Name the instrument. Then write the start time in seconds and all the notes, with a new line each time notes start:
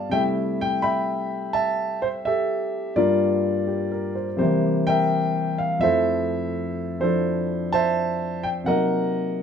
grand piano
Already playing: G2 F3 A3 B3 A5
0.09 C3 G3 A3 E5 G5
0.14 E4
0.61 G5
0.82 E5 G5 B5
1.53 E5 A5
2.02 C5
2.25 G4 A4 E5
2.96 G2 G3 A#3 F4 A#4 D5
3.67 G4
3.92 A#4
4.15 C5
4.37 C3 G3 A#3 G4 C5
4.42 E3
4.87 A#4 E5 G5
5.58 F5
5.79 F2 F3 A3 A4 C5 E5
5.84 E4
7.00 F3 D4 E4 A4 C5
7.73 C5 E5 A5
8.43 G5
8.64 C3 F#3 A#3 A#4 D#5 F#5
8.69 D#4